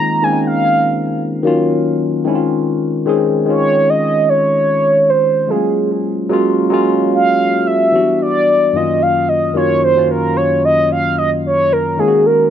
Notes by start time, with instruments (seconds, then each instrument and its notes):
Already playing: tine electric piano D#3 G#3 A#3 C4 D#4 F4, soft synth lead A#5
0.22 tine electric piano D#3 G#3 A#3 C4, soft synth lead G#5
0.26 tine electric piano C#4
0.32 tine electric piano D#4
0.47 soft synth lead F5
1.43 tine electric piano D#3 F#3 A#3 C#4
1.47 tine electric piano F4
2.24 tine electric piano D#3 G#3 C4 C#4
2.29 tine electric piano E4
2.35 tine electric piano F4
3.05 tine electric piano D#3 G#3 C4 C#4 G#4
3.46 tine electric piano D#3 G#3 C#4 D#4, soft synth lead C#5
3.50 tine electric piano F4
3.90 soft synth lead D#5
4.29 soft synth lead C#5
5.10 soft synth lead C5
5.48 tine electric piano F#3 G#3 A3 C#4 F4, soft synth lead G#4
5.56 tine electric piano A#3
6.29 tine electric piano F#3 G#3 A#3 C#4
6.33 tine electric piano F4
6.70 tine electric piano F#3 G#3 A#3 C#4 F4
7.12 soft synth lead F5
7.67 soft synth lead E5
7.92 tine electric piano E3 F#3 B3 D4 F#4
7.99 tine electric piano G3
8.22 soft synth lead D5
8.73 tine electric piano F#2 D#3 F#3 A#3 C#4, soft synth lead D#5
8.77 tine electric piano F4
9.02 soft synth lead F5
9.29 soft synth lead D#5
9.53 tine electric piano F#2 D#3 F#3 A#3 C#4
9.57 tine electric piano F4, soft synth lead C#5
9.84 soft synth lead C5
9.95 tine electric piano F#2 D#3 F#3 A#3 C#4 F4
10.11 soft synth lead A#4
10.37 soft synth lead C#5
10.65 soft synth lead D#5
10.92 soft synth lead F5
11.18 soft synth lead D#5
11.46 soft synth lead C#5
11.73 soft synth lead A#4
11.97 tine electric piano D#3 G#3 A#3 C#4, soft synth lead G#4
12.01 tine electric piano F4
12.08 tine electric piano F#4
12.26 soft synth lead A#4